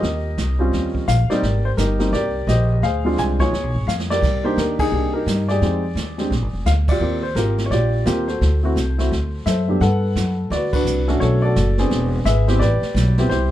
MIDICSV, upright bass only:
0, 0, Header, 1, 3, 480
1, 0, Start_track
1, 0, Tempo, 349447
1, 37, Time_signature, 4, 2, 24, 8
1, 18560, End_track
2, 0, Start_track
2, 0, Title_t, "Upright bass"
2, 0, Program_c, 0, 32
2, 29, Note_on_c, 0, 39, 70
2, 499, Note_off_c, 0, 39, 0
2, 515, Note_on_c, 0, 36, 69
2, 977, Note_off_c, 0, 36, 0
2, 985, Note_on_c, 0, 39, 65
2, 1457, Note_off_c, 0, 39, 0
2, 1478, Note_on_c, 0, 34, 82
2, 1755, Note_off_c, 0, 34, 0
2, 1959, Note_on_c, 0, 32, 70
2, 2423, Note_off_c, 0, 32, 0
2, 2433, Note_on_c, 0, 31, 71
2, 2900, Note_off_c, 0, 31, 0
2, 2915, Note_on_c, 0, 36, 72
2, 3381, Note_off_c, 0, 36, 0
2, 3392, Note_on_c, 0, 34, 74
2, 3860, Note_off_c, 0, 34, 0
2, 3874, Note_on_c, 0, 38, 70
2, 4341, Note_off_c, 0, 38, 0
2, 4353, Note_on_c, 0, 36, 75
2, 4820, Note_off_c, 0, 36, 0
2, 4831, Note_on_c, 0, 37, 72
2, 4987, Note_off_c, 0, 37, 0
2, 4987, Note_on_c, 0, 35, 42
2, 5138, Note_off_c, 0, 35, 0
2, 5147, Note_on_c, 0, 32, 55
2, 5300, Note_off_c, 0, 32, 0
2, 5310, Note_on_c, 0, 41, 74
2, 5778, Note_off_c, 0, 41, 0
2, 5796, Note_on_c, 0, 36, 74
2, 6261, Note_off_c, 0, 36, 0
2, 6268, Note_on_c, 0, 39, 71
2, 6737, Note_off_c, 0, 39, 0
2, 6750, Note_on_c, 0, 36, 69
2, 7218, Note_off_c, 0, 36, 0
2, 7225, Note_on_c, 0, 43, 77
2, 7695, Note_off_c, 0, 43, 0
2, 7709, Note_on_c, 0, 41, 71
2, 8168, Note_off_c, 0, 41, 0
2, 8176, Note_on_c, 0, 39, 72
2, 8647, Note_off_c, 0, 39, 0
2, 8655, Note_on_c, 0, 34, 68
2, 8817, Note_off_c, 0, 34, 0
2, 8817, Note_on_c, 0, 32, 43
2, 8966, Note_off_c, 0, 32, 0
2, 8974, Note_on_c, 0, 29, 52
2, 9132, Note_off_c, 0, 29, 0
2, 9145, Note_on_c, 0, 38, 74
2, 9605, Note_off_c, 0, 38, 0
2, 9613, Note_on_c, 0, 39, 72
2, 10089, Note_off_c, 0, 39, 0
2, 10096, Note_on_c, 0, 32, 75
2, 10571, Note_off_c, 0, 32, 0
2, 10581, Note_on_c, 0, 34, 72
2, 11053, Note_off_c, 0, 34, 0
2, 11065, Note_on_c, 0, 39, 79
2, 11536, Note_off_c, 0, 39, 0
2, 11554, Note_on_c, 0, 38, 75
2, 12020, Note_off_c, 0, 38, 0
2, 12027, Note_on_c, 0, 36, 74
2, 12497, Note_off_c, 0, 36, 0
2, 12517, Note_on_c, 0, 38, 69
2, 12982, Note_off_c, 0, 38, 0
2, 12990, Note_on_c, 0, 42, 76
2, 13458, Note_off_c, 0, 42, 0
2, 13468, Note_on_c, 0, 43, 82
2, 13937, Note_off_c, 0, 43, 0
2, 13949, Note_on_c, 0, 42, 77
2, 14418, Note_off_c, 0, 42, 0
2, 14426, Note_on_c, 0, 38, 77
2, 14892, Note_off_c, 0, 38, 0
2, 14900, Note_on_c, 0, 36, 76
2, 15373, Note_off_c, 0, 36, 0
2, 15390, Note_on_c, 0, 35, 76
2, 15859, Note_off_c, 0, 35, 0
2, 15879, Note_on_c, 0, 30, 83
2, 16344, Note_off_c, 0, 30, 0
2, 16352, Note_on_c, 0, 28, 76
2, 16820, Note_off_c, 0, 28, 0
2, 16826, Note_on_c, 0, 32, 82
2, 17297, Note_off_c, 0, 32, 0
2, 17308, Note_on_c, 0, 33, 80
2, 17590, Note_off_c, 0, 33, 0
2, 17779, Note_on_c, 0, 35, 85
2, 18249, Note_off_c, 0, 35, 0
2, 18257, Note_on_c, 0, 36, 79
2, 18560, Note_off_c, 0, 36, 0
2, 18560, End_track
3, 0, Start_track
3, 0, Title_t, "Muted upright bass strokes"
3, 1786, Note_on_c, 9, 29, 34
3, 1924, Note_off_c, 9, 29, 0
3, 17600, Note_on_c, 9, 29, 39
3, 17737, Note_off_c, 9, 29, 0
3, 18560, End_track
0, 0, End_of_file